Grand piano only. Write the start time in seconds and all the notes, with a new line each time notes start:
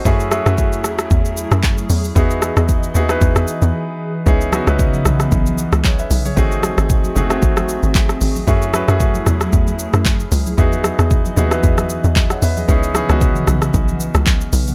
Already playing: C5
0.05 A3 C#4 E4 F#4 G#4
0.31 A3 C#4 E4 F#4 G#4
0.46 A3 C#4 E4 F#4 G#4
2.15 B3 D#4 E4 F#4 G#4
2.94 B3 D#4 E4 F#4 G#4
3.09 B3 D#4 E4 F#4 B4
4.26 B3 C#4 D#4 E4 G#4
4.52 B3 C#4 D#4 E4 F#4
4.67 B3 C#4 D#4 E4 B4
5.85 G#4 C#5
5.99 B4 E5
6.26 G#4 C#5
6.36 A3 C4 D#4 F#4 G#4
7.15 A3 C4 D#4 F#4 G#4
7.30 A3 C4 D#4 F#4 G#4
8.47 A3 C#4 E4 F#4 G#4
8.73 A3 C#4 E4 F#4 B4
8.88 A3 C#4 E4 F#4 G#4
10.57 B3 D#4 E4 F#4 G#4
11.36 B3 D#4 E4 F#4 G#4
11.51 B3 D#4 E4 F#4 B4
12.31 C#5 F#5
12.43 B4 E5
12.57 G#4 D#5
12.68 B3 C#4 D#4 E4 G#4
12.94 B3 C#4 D#4 E4 G#4
13.09 B3 C#4 D#4 E4 F#4